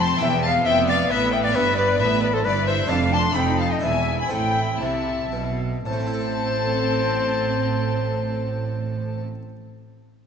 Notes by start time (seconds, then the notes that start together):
Already playing: F1 F2 C4 E4 G4
0.00 A5 C6
0.17 E1 B3 E4 G4 E5
0.21 E2 B3 E5 G5
0.43 F5 A5
0.65 F1 F2 E5 G5
0.87 D5 F5
1.09 A1 A2 B4 E5
1.32 E5 G5
1.43 D5 F5
1.51 G1 B3 E4 G4 B4 E5
1.55 G2 B4
1.77 B4 D5
1.99 A1 A2 B3 B4 E5
2.22 B4 D5
2.33 A4 C5
2.44 G1 G2 E4 B4 D5
2.67 C5 E5
2.85 A3 D4 A4
2.90 F1 F2 D4 F5 A5
3.13 A5 C6
3.31 A3 D#4 A4 G5
3.35 F1 F2 D#4 G5 B5
3.59 F5 A5
3.71 D#5 G5
3.79 E2 D4 E4 B4 E5 G#5
3.83 E1 E2 E5
4.18 G#5 B5
4.27 C4 E4 A4 G5
4.31 A1 A2 E4 G5 B5
4.80 C2 C3 E5 A5
5.32 B1 B2
5.85 A1 A2 C4 A4 C5 A5
5.92 A3
5.99 C4
6.07 E4
6.13 A4
6.21 E5